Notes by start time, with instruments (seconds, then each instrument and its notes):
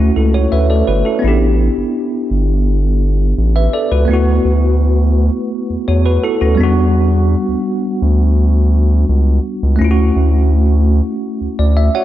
Already playing: sub bass D2, tine electric piano A3 C#4 E4 F#4
0.16 sub bass C#2, tine electric piano E4 A4
0.34 tine electric piano F#4 C#5
0.52 sub bass D2, tine electric piano B4 E5
0.70 tine electric piano A4 D5
0.87 sub bass G1, tine electric piano F#4 B4
1.05 tine electric piano E4 A4
1.19 tine electric piano B3 C#4
1.24 sub bass A1, tine electric piano E4
1.28 tine electric piano D4 G4
1.77 sub bass G1
2.31 sub bass G1
3.38 sub bass A1
3.56 tine electric piano B4 E5
3.73 tine electric piano A4 D5
3.91 sub bass C#2, tine electric piano F#4 B4
4.05 sub bass D2, tine electric piano A3 B3
4.11 tine electric piano E4 F#4
4.45 sub bass D2
5.70 sub bass E2
5.88 sub bass E2, tine electric piano F#4 C#5
6.06 tine electric piano F#4 B4
6.24 tine electric piano E4 A4
6.41 sub bass D2, tine electric piano C#4 F#4
6.55 tine electric piano G3 B3
6.59 sub bass E2, tine electric piano D4
6.63 tine electric piano F#4
7.48 sub bass D2
8.02 sub bass D2
9.09 sub bass C#2
9.63 sub bass C#2
9.76 tine electric piano A3 C#4
9.80 sub bass D2, tine electric piano E4 F4
9.91 tine electric piano F#4
10.16 sub bass D2
11.41 sub bass D2
11.59 sub bass D2, tine electric piano D5
11.77 tine electric piano E5
11.95 tine electric piano F#4 C#5 F#5